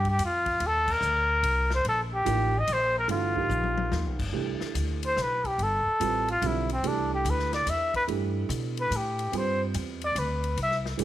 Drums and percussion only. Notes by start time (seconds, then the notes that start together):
0.05 kick, ride
0.19 hi-hat pedal, ride
0.46 kick, ride
0.60 ride
0.88 kick, crash
1.02 hi-hat pedal
1.43 ride
1.70 snare
1.85 ride
2.26 hi-hat pedal, ride
2.67 hi-hat pedal, ride
3.09 ride
3.36 kick
3.50 hi-hat pedal, high tom
3.64 high tom
3.78 high tom
3.92 snare
4.19 kick, crash
4.61 snare
4.75 hi-hat pedal, ride
5.03 ride
5.17 snare, hi-hat pedal
5.44 kick, ride
5.59 ride
6.01 hi-hat pedal, ride
6.28 ride
6.42 hi-hat pedal, ride
6.69 ride
6.84 ride
7.25 hi-hat pedal, ride
7.39 snare
7.53 snare, ride
7.67 hi-hat pedal, ride
7.94 kick, ride
8.08 ride
8.50 hi-hat pedal, ride
8.77 ride
8.92 hi-hat pedal, ride
9.19 ride
9.33 ride
9.74 hi-hat pedal, ride
10.01 ride
10.16 hi-hat pedal, ride
10.44 ride
10.57 ride
10.71 snare
10.86 snare
10.99 hi-hat pedal, ride